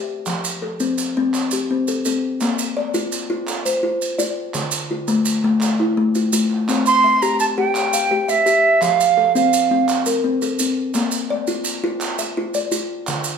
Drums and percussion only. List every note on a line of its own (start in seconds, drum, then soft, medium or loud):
0.26 clap medium
0.26 maracas medium
0.44 maracas medium
0.63 clap soft
0.80 maracas medium
0.98 clap soft
0.98 maracas medium
1.34 clap medium
1.34 maracas medium
1.51 maracas medium
1.88 maracas medium
2.05 maracas medium
2.40 clap medium
2.40 maracas medium
2.59 maracas medium
2.78 clap soft
2.94 maracas medium
3.12 clap soft
3.12 maracas medium
3.48 clap medium
3.48 maracas medium
3.66 maracas medium
4.02 maracas medium
4.19 maracas medium
4.54 clap medium
4.54 maracas medium
4.71 clap soft
4.71 maracas medium
5.08 clap soft
5.08 maracas medium
5.25 clap soft
5.25 maracas medium
5.44 clap soft
5.61 clap medium
5.61 maracas medium
5.79 clap soft
6.15 maracas medium
6.33 maracas medium
6.50 clap soft
6.69 clap medium
6.69 maracas medium
6.86 maracas medium
7.04 clap soft
7.22 maracas medium
7.40 clap soft
7.40 maracas medium
7.75 clap medium
7.75 maracas medium
7.93 maracas medium
8.29 maracas medium
8.46 maracas medium
8.82 clap medium
8.82 maracas medium
9.00 maracas medium
9.18 clap soft
9.36 maracas medium
9.53 clap soft
9.53 maracas medium
9.89 clap medium
9.89 maracas medium
10.06 maracas medium
10.42 maracas medium
10.59 maracas medium
10.94 clap medium
10.94 maracas medium
11.11 maracas medium
11.30 clap soft
11.47 maracas medium
11.64 clap soft
11.64 maracas medium
12.01 clap medium
12.01 maracas medium
12.19 maracas medium
12.54 maracas medium
12.72 maracas medium
13.07 clap medium
13.07 maracas medium
13.24 clap soft
13.24 maracas medium